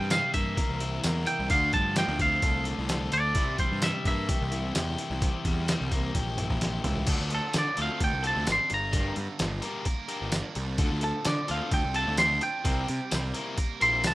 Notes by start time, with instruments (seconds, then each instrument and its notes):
Already playing: overdriven electric guitar C3 C4, clean electric guitar G5
0.00 picked electric bass G2
0.10 distorted electric guitar C3 E3, overdriven electric guitar G3, clean electric guitar F5, snare, closed hi-hat, tambourine
0.34 picked electric bass G2, distorted electric guitar C3 E3, overdriven electric guitar A#3, clean electric guitar E5, kick, closed hi-hat
0.57 distorted electric guitar C3 E3, overdriven electric guitar A#4, kick, closed hi-hat
0.69 picked electric bass C2
0.80 distorted electric guitar C3 E3, overdriven electric guitar E4, closed hi-hat
1.03 picked electric bass E2, distorted electric guitar C3 E3, overdriven electric guitar A#4, snare, closed hi-hat, tambourine
1.27 distorted electric guitar C3 E3, overdriven electric guitar E4, clean electric guitar G5, closed hi-hat
1.40 picked electric bass C2
1.50 picked electric bass D2, distorted electric guitar D3 A3 D4, overdriven electric guitar D3, clean electric guitar F5, kick, closed hi-hat
1.73 picked electric bass G2, distorted electric guitar D3 A3, overdriven electric guitar F3, clean electric guitar A5, kick, closed hi-hat
1.96 distorted electric guitar D3 A3, overdriven electric guitar F3, clean electric guitar G5, snare, closed hi-hat, tambourine
2.08 picked electric bass D2
2.19 distorted electric guitar D3 A3, overdriven electric guitar C4, clean electric guitar F5, kick, closed hi-hat
2.42 picked electric bass C2, distorted electric guitar D3 A3, overdriven electric guitar A4, kick, closed hi-hat
2.65 distorted electric guitar D3 A3, overdriven electric guitar D4, closed hi-hat
2.78 picked electric bass C2
2.89 distorted electric guitar D3 A3, overdriven electric guitar A4, snare, closed hi-hat, tambourine
3.12 picked electric bass D2, distorted electric guitar D3 A3, overdriven electric guitar D4, clean electric guitar D5, closed hi-hat
3.35 picked electric bass C2, distorted electric guitar C3 E3 G3, overdriven electric guitar C3, kick, closed hi-hat
3.58 distorted electric guitar C3 E3, overdriven electric guitar G3, clean electric guitar C5, kick, closed hi-hat
3.72 picked electric bass G2
3.81 distorted electric guitar C3 E3, overdriven electric guitar G3, clean electric guitar E5, snare, closed hi-hat, tambourine
4.05 picked electric bass G2, distorted electric guitar C3 E3, overdriven electric guitar A#3, clean electric guitar E5, kick, closed hi-hat
4.28 distorted electric guitar C3 E3, overdriven electric guitar G4, kick, closed hi-hat
4.41 picked electric bass C2
4.52 distorted electric guitar C3 E3, overdriven electric guitar E4, closed hi-hat
4.75 picked electric bass E2, distorted electric guitar C3 E3, overdriven electric guitar G4, snare, closed hi-hat, tambourine
4.98 distorted electric guitar C3 E3, overdriven electric guitar E4, closed hi-hat
5.10 picked electric bass C2
5.21 overdriven electric guitar C3, distorted electric guitar C3 E3, kick, closed hi-hat
5.45 picked electric bass E2, distorted electric guitar C3 E3, overdriven electric guitar G3, kick, closed hi-hat
5.68 distorted electric guitar C3 E3, overdriven electric guitar G3, snare, closed hi-hat, tambourine
5.81 picked electric bass C2
5.91 distorted electric guitar C3 E3, overdriven electric guitar A#3, kick, closed hi-hat
6.14 picked electric bass A#1, distorted electric guitar C3 E3, overdriven electric guitar G4, kick, closed hi-hat
6.38 distorted electric guitar C3 E3, overdriven electric guitar E4, closed hi-hat, mid tom
6.50 picked electric bass A#1, kick
6.61 distorted electric guitar C3 E3, overdriven electric guitar G4, snare, closed hi-hat
6.84 picked electric bass C#2, distorted electric guitar C3 E3, overdriven electric guitar E4, closed hi-hat, floor tom
6.96 floor tom
7.07 picked electric bass D2, distorted electric guitar D3, overdriven electric guitar A3 D4 F4 A4, kick, closed hi-hat, crash
7.20 picked electric bass D2
7.30 distorted electric guitar F3, muted overdriven electric guitar stroke, closed hi-hat
7.35 clean electric guitar A4
7.53 picked electric bass D3, distorted electric guitar F3, muted overdriven electric guitar stroke, snare, closed hi-hat, tambourine
7.58 clean electric guitar D5
7.77 picked electric bass D2, overdriven electric guitar A3 D4 F4 A4, distorted electric guitar C4, closed hi-hat
7.82 clean electric guitar F5
8.00 picked electric bass D2, distorted electric guitar A4, clean electric guitar G5, muted overdriven electric guitar stroke, kick, closed hi-hat
8.12 picked electric bass C2
8.23 overdriven electric guitar A3 D4 F4 A4, distorted electric guitar C4, clean electric guitar A5, closed hi-hat
8.36 picked electric bass D2
8.47 picked electric bass G#1, distorted electric guitar D4, muted overdriven electric guitar stroke, snare, closed hi-hat, tambourine
8.52 clean electric guitar C6
8.70 picked electric bass G1, distorted electric guitar G2, muted overdriven electric guitar stroke, closed hi-hat
8.74 clean electric guitar A#5
8.92 distorted electric guitar G2, overdriven electric guitar G3 D4 G4 A#4, kick, closed hi-hat
9.16 picked electric bass G2, distorted electric guitar D3, muted overdriven electric guitar stroke, closed hi-hat
9.39 picked electric bass G1, distorted electric guitar G3, muted overdriven electric guitar stroke, snare, closed hi-hat, tambourine
9.62 overdriven electric guitar G3 D4 G4 A#4, distorted electric guitar A#3, closed hi-hat
9.85 distorted electric guitar A#4, muted overdriven electric guitar stroke, kick, closed hi-hat
10.08 overdriven electric guitar G3 D4 G4 A#4, distorted electric guitar A#3, closed hi-hat
10.22 picked electric bass G1
10.32 distorted electric guitar D4, muted overdriven electric guitar stroke, snare, closed hi-hat, tambourine
10.55 picked electric bass C2, distorted electric guitar G3, muted overdriven electric guitar stroke, closed hi-hat
10.78 picked electric bass D2, overdriven electric guitar D3 D4 F4 A4, distorted electric guitar D3, kick, closed hi-hat
10.92 picked electric bass D2
11.01 distorted electric guitar F3, clean electric guitar A4, muted overdriven electric guitar stroke, closed hi-hat
11.25 picked electric bass D3, distorted electric guitar F3, clean electric guitar D5, muted overdriven electric guitar stroke, snare, closed hi-hat, tambourine
11.48 picked electric bass D2, overdriven electric guitar D3 D4 F4 A4, distorted electric guitar C4, clean electric guitar F5, closed hi-hat
11.71 picked electric bass D2, distorted electric guitar A4, clean electric guitar G5, muted overdriven electric guitar stroke, kick, closed hi-hat
11.84 picked electric bass C2
11.94 overdriven electric guitar D3 D4 F4 A4, distorted electric guitar C4, clean electric guitar A5, closed hi-hat
12.07 picked electric bass D2
12.17 picked electric bass D2, distorted electric guitar D4, clean electric guitar C6, muted overdriven electric guitar stroke, snare, closed hi-hat, tambourine
12.41 distorted electric guitar F3, clean electric guitar G5, muted overdriven electric guitar stroke, closed hi-hat
12.64 picked electric bass C2, distorted electric guitar C3, overdriven electric guitar G3 C4 E4 A#4, kick, closed hi-hat
12.88 picked electric bass C3, distorted electric guitar G3, muted overdriven electric guitar stroke, closed hi-hat
13.11 picked electric bass C2, distorted electric guitar G3, muted overdriven electric guitar stroke, snare, closed hi-hat, tambourine
13.34 overdriven electric guitar G3 C4 E4 A#4, distorted electric guitar A#3, closed hi-hat
13.57 distorted electric guitar A#4, muted overdriven electric guitar stroke, kick, closed hi-hat
13.81 picked electric bass A#1, overdriven electric guitar G3 C4 E4 A#4, distorted electric guitar A#3, clean electric guitar C6, closed hi-hat
14.04 picked electric bass C2, distorted electric guitar E4, clean electric guitar A5, muted overdriven electric guitar stroke, snare, closed hi-hat, tambourine